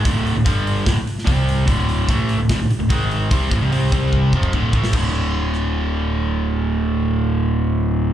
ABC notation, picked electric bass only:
X:1
M:4/4
L:1/16
Q:1/4=147
K:Clyd
V:1 name="Picked electric bass" clef=bass
D,,,3 D,,, G,,,4 D,,, z3 C,,4 | D,,,4 A,,,3 D,,, C,, D,,, z D,,, ^G,,,4 | C,,2 A,,, C,, C,,2 C,,4 =F,,,2 D,,,2 A,,,2 | D,,,16- |
D,,,16 |]